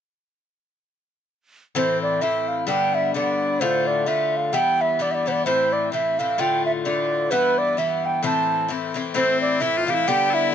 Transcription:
1.75 2.20 A2 medium
1.75 2.21 E3 medium
1.75 2.21 C4 medium
1.75 2.22 E4 medium
1.75 2.01 C5 medium
2.02 2.23 D5 medium
2.21 2.66 A2 medium
2.21 2.67 E3 medium
2.21 2.67 C4 medium
2.21 2.68 E4 medium
2.21 2.50 E5 medium
2.48 2.68 F5 medium
2.67 3.13 G2 medium
2.67 3.13 D3 medium
2.67 3.14 B3 medium
2.67 3.15 D4 medium
2.67 2.96 G5 medium
2.95 3.14 E5 medium
3.14 3.61 G2 soft
3.14 3.60 D3 medium
3.14 3.61 B3 medium
3.14 3.62 D4 medium
3.14 3.62 D5 medium
3.60 4.05 A2 medium
3.60 4.06 D3 medium
3.60 4.06 A3 medium
3.60 4.07 F4 medium
3.60 3.88 C5 medium
3.87 4.09 D5 medium
4.06 4.52 A2 medium
4.06 4.53 D3 medium
4.06 4.54 A3 medium
4.06 4.54 F4 medium
4.06 4.38 E5 medium
4.37 4.55 F5 medium
4.53 4.98 G2 medium
4.53 4.98 E3 medium
4.53 4.99 B3 medium
4.53 5.00 E4 medium
4.53 4.83 G5 loud
4.81 5.03 E5 medium
4.99 5.25 G2 medium
4.99 5.26 E3 medium
4.99 5.26 B3 medium
4.99 5.27 E4 medium
4.99 5.13 D5 medium
5.11 5.29 D5 medium
5.11 5.16 E5 medium
5.26 5.46 G2 soft
5.26 5.45 E3 medium
5.26 5.46 B3 medium
5.26 5.46 E4 medium
5.26 5.33 C5 soft
5.31 5.45 D5 medium
5.46 5.91 A2 medium
5.46 5.92 E3 medium
5.46 5.93 C4 medium
5.46 5.93 E4 medium
5.46 5.74 C5 loud
5.73 5.92 D5 medium
5.92 6.18 A2 medium
5.92 6.19 E3 medium
5.92 6.19 C4 medium
5.92 6.19 E4 medium
5.92 6.20 E5 medium
6.19 6.37 A2 soft
6.19 6.38 E3 soft
6.19 6.39 C4 medium
6.19 6.39 E4 medium
6.19 6.41 F5 medium
6.38 6.84 A2 medium
6.38 6.84 D3 medium
6.38 6.85 A3 medium
6.38 6.85 F4 medium
6.38 6.65 G5 loud
6.66 6.72 E5 medium
6.85 7.30 A2 medium
6.85 7.31 D3 medium
6.85 7.31 A3 soft
6.85 7.32 F4 medium
6.85 7.32 D5 medium
7.31 7.76 G2 medium
7.31 7.78 E3 medium
7.31 7.78 B3 medium
7.31 7.79 E4 medium
7.31 7.60 B4 loud
7.58 7.80 D5 loud
7.77 8.22 G2 soft
7.77 8.22 E3 medium
7.77 8.24 B3 medium
7.77 8.23 E4 medium
7.77 8.06 E5 medium
8.05 8.24 G5 medium
8.23 8.67 A2 medium
8.23 8.68 E3 medium
8.23 8.69 C4 medium
8.23 8.69 E4 medium
8.23 8.67 A5 loud
8.68 8.93 A2 medium
8.68 8.94 E3 medium
8.68 8.94 C4 medium
8.68 8.95 E4 medium
8.94 9.13 A2 medium
8.94 9.13 E3 medium
8.94 9.14 C4 medium
8.94 9.15 E4 medium
9.14 9.59 A2 medium
9.14 9.59 E3 medium
9.14 9.62 C4 medium
9.14 9.60 C4 medium
9.14 9.61 E4 medium
9.14 9.40 C5 medium
9.41 9.62 D5 medium
9.60 9.86 A2 soft
9.60 9.87 E3 medium
9.60 9.87 C4 medium
9.60 9.77 E4 medium
9.60 9.88 E4 medium
9.60 9.87 E5 medium
9.77 9.90 F4 medium
9.87 10.07 A2 medium
9.87 10.08 E3 medium
9.87 10.08 C4 soft
9.87 10.08 E4 medium
9.87 9.94 G4 medium
9.87 10.09 F5 medium
9.94 10.08 E4 medium
10.07 10.51 G2 medium
10.07 10.53 D3 medium
10.07 10.53 B3 medium
10.07 10.53 D4 medium
10.07 10.30 G4 medium
10.07 10.36 G5 loud
10.30 10.54 E4 medium
10.30 10.34 A4 medium
10.34 10.53 E5 medium

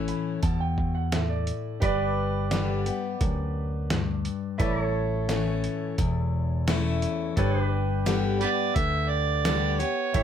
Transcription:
0.00 0.11 A1 medium
0.00 0.36 A2 medium
0.00 0.39 E3 medium
0.00 0.39 A3 medium
0.00 0.40 C#4 medium
0.00 0.40 E4 medium
0.00 1.77 E4 medium
0.00 1.78 A4 medium
0.00 1.79 C#5 medium
0.00 1.78 E5 medium
0.08 0.41 B5 medium
0.08 closed hi-hat medium
0.43 1.50 E2 medium
0.43 1.09 B2 medium
0.43 0.59 A5 medium
0.43 kick loud
0.43 closed hi-hat medium
0.60 0.93 G5 medium
0.78 kick medium
0.95 1.11 F#5 medium
1.12 1.78 A2 medium
1.12 1.29 E5 medium
1.12 snare loud
1.12 closed hi-hat medium
1.30 1.78 D5 medium
1.47 closed hi-hat medium
1.80 2.89 G1 medium
1.80 3.14 G2 medium
1.80 4.55 G4 medium
1.80 4.55 B4 medium
1.80 4.57 B4 medium
1.80 4.56 D5 loud
1.80 4.58 D5 medium
1.80 kick loud
1.80 closed hi-hat medium
2.51 2.85 D3 medium
2.51 2.85 G3 medium
2.51 2.85 B3 medium
2.51 2.85 G4 medium
2.51 snare loud
2.51 closed hi-hat medium
2.86 3.20 B3 soft
2.86 3.19 G4 medium
2.86 closed hi-hat medium
3.21 4.28 D2 medium
3.21 3.87 F#2 medium
3.21 kick loud
3.21 closed hi-hat medium
3.90 4.56 G2 medium
3.90 snare loud
3.90 closed hi-hat medium
4.25 closed hi-hat medium
4.58 5.67 A1 medium
4.58 5.92 A2 medium
4.58 7.32 E4 medium
4.58 7.33 A4 medium
4.58 4.84 B4 medium
4.58 7.34 C#5 medium
4.58 4.80 D5 medium
4.58 kick loud
4.58 closed hi-hat medium
4.80 7.34 A4 medium
4.80 7.35 C#5 medium
5.29 5.95 E3 medium
5.29 5.95 A3 medium
5.29 5.96 C#4 medium
5.29 5.96 E4 medium
5.29 snare loud
5.29 closed hi-hat medium
5.64 closed hi-hat medium
5.98 7.05 E1 medium
5.98 7.30 E2 medium
5.98 kick loud
5.98 closed hi-hat medium
6.67 7.34 E3 medium
6.67 7.34 A3 loud
6.67 7.34 C#4 medium
6.67 7.34 E4 loud
6.67 snare loud
6.67 closed hi-hat medium
7.02 closed hi-hat medium
7.36 8.44 G1 medium
7.36 8.69 G2 medium
7.36 10.10 D4 medium
7.36 10.11 G4 medium
7.36 7.62 A4 medium
7.36 10.12 B4 medium
7.36 7.63 C#5 medium
7.36 kick loud
7.36 closed hi-hat medium
7.62 10.12 G4 medium
7.62 10.13 B4 medium
8.06 8.40 D3 medium
8.06 8.40 G3 medium
8.06 8.40 B3 medium
8.06 8.40 G4 medium
8.06 snare loud
8.06 closed hi-hat medium
8.41 8.75 B3 medium
8.41 8.48 G4 medium
8.41 8.74 G4 medium
8.41 8.48 B4 medium
8.41 8.77 D5 loud
8.41 closed hi-hat medium
8.75 9.83 D2 medium
8.75 9.44 D3 medium
8.75 9.11 E5 loud
8.75 kick loud
8.75 closed hi-hat medium
9.10 9.81 D5 loud
9.45 9.78 D3 medium
9.45 9.79 G3 medium
9.45 9.79 B3 loud
9.45 9.78 G4 loud
9.45 snare loud
9.45 closed hi-hat medium
9.79 10.14 B3 soft
9.79 10.13 G4 medium
9.79 10.23 C#5 medium
9.79 closed hi-hat medium
10.13 10.23 A1 medium
10.13 10.23 A2 medium
10.13 10.23 E4 medium
10.13 10.23 G4 medium
10.13 10.23 A4 medium
10.13 10.23 C#5 medium
10.13 kick loud
10.13 closed hi-hat medium

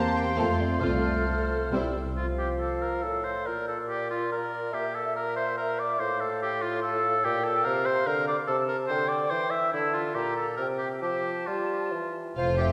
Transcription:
0.00 0.34 A#3 medium
0.00 0.39 A#3 medium
0.00 0.34 C4 medium
0.00 0.37 G4 medium
0.00 1.91 C5 medium
0.00 0.17 A5 medium
0.00 0.80 C6 medium
0.17 0.38 G5 medium
0.36 0.74 F2 medium
0.36 0.57 A3 medium
0.36 1.74 A3 medium
0.36 0.81 A3 medium
0.36 0.58 C4 medium
0.36 0.82 C4 medium
0.36 0.81 F4 medium
0.36 0.58 A4 medium
0.36 0.58 C5 medium
0.36 0.60 F5 medium
0.61 0.82 D5 medium
0.81 1.20 C2 medium
0.81 1.27 A3 soft
0.81 1.04 A3 medium
0.81 1.04 C4 medium
0.81 1.03 F4 medium
0.81 1.27 F4 medium
0.81 1.95 A4 medium
0.81 1.03 C5 medium
0.81 1.28 D5 medium
0.81 1.73 F6 medium
1.28 1.72 A3 soft
1.28 1.72 F4 soft
1.28 1.74 C5 medium
1.72 2.10 C2 soft
1.72 1.93 G3 medium
1.72 1.95 G3 soft
1.72 1.93 C4 medium
1.72 1.95 E4 medium
1.72 1.94 E4 medium
1.72 1.94 C5 medium
1.72 1.96 E6 soft
2.16 3.06 F3 soft
2.16 2.26 F4 medium
2.16 2.58 F5 soft
2.39 2.48 G4 medium
2.59 2.84 A4 medium
2.59 3.03 F5 soft
2.82 3.04 A#4 medium
3.03 3.48 A2 soft
3.03 3.25 A4 medium
3.03 3.46 F5 soft
3.24 3.48 C5 medium
3.46 4.73 A#2 soft
3.46 3.67 A#4 medium
3.46 4.31 D5 soft
3.68 3.77 A4 medium
3.89 4.10 G4 medium
4.11 4.31 F4 medium
4.32 4.75 A#4 medium
4.32 4.73 D5 soft
4.73 5.97 A#2 medium
4.73 4.96 G4 medium
4.73 5.14 E5 soft
4.95 5.15 A4 medium
5.15 5.35 A#4 medium
5.15 5.57 E5 soft
5.36 5.57 C5 medium
5.57 5.81 A#4 medium
5.57 5.99 E5 medium
5.79 6.01 D5 medium
5.99 7.21 A2 medium
5.99 6.22 C5 medium
5.99 6.81 F5 medium
6.21 6.41 A4 medium
6.42 6.63 G4 medium
6.62 6.82 F4 medium
6.82 7.26 A4 medium
6.82 7.23 F5 medium
7.24 7.63 A#2 medium
7.24 7.45 G4 medium
7.24 7.62 G5 medium
7.44 7.66 A4 medium
7.65 8.06 C3 medium
7.65 7.87 A#4 medium
7.65 8.48 F5 medium
7.86 8.08 C5 medium
8.06 8.36 D3 medium
8.06 8.27 A#4 medium
8.28 8.37 D5 medium
8.47 8.89 C3 medium
8.47 8.57 A4 medium
8.47 8.89 A5 medium
8.68 8.77 A#4 medium
8.88 9.30 D3 medium
8.88 9.10 C5 medium
8.88 9.46 G5 medium
9.09 9.32 D5 medium
9.30 9.72 E3 medium
9.30 9.52 C5 medium
9.51 9.72 E5 medium
9.73 10.14 D3 medium
9.73 9.96 E4 medium
9.73 10.14 A5 medium
9.94 10.16 F4 medium
10.15 10.59 A#2 medium
10.15 10.35 G4 medium
10.15 10.57 A#5 soft
10.36 10.56 A4 medium
10.57 11.01 C3 medium
10.57 10.67 A#4 medium
10.57 11.03 G5 soft
10.78 10.89 G4 medium
11.02 11.46 F3 soft
11.02 11.48 G4 medium
11.02 12.15 A5 soft
11.46 11.93 G3 soft
11.46 12.14 F4 soft
11.92 12.36 E3 soft
12.36 12.72 F1 medium
12.36 12.72 F2 medium
12.36 12.72 C4 soft
12.36 12.56 F4 medium
12.36 12.72 A4 medium
12.36 12.57 C5 medium
12.36 12.57 F5 medium
12.58 12.67 G4 medium
12.58 12.72 G4 medium
12.58 12.72 E5 medium
12.58 12.72 G5 medium

